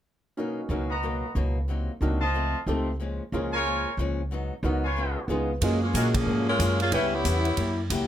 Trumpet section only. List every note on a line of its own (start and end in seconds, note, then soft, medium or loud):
0.90 1.33 F#4 medium
0.90 1.33 B4 medium
0.90 1.33 D#5 medium
0.90 1.33 A#5 medium
2.21 2.64 F4 medium
2.21 2.64 C5 medium
2.21 2.64 D#5 medium
2.21 2.64 A5 medium
3.53 3.95 F4 medium
3.53 3.96 A#4 medium
3.53 3.95 C#5 medium
3.53 3.96 G#5 loud
4.84 5.27 F4 medium
4.84 5.27 B4 medium
4.84 5.27 C#5 medium
4.84 5.27 G#5 medium
5.94 6.08 F#4 medium
5.94 6.08 A#4 medium
5.94 6.08 F5 medium
5.94 6.08 G#5 medium
6.93 7.06 E4 medium
6.93 7.06 B4 medium
6.93 7.06 C#5 medium
6.93 7.06 G5 medium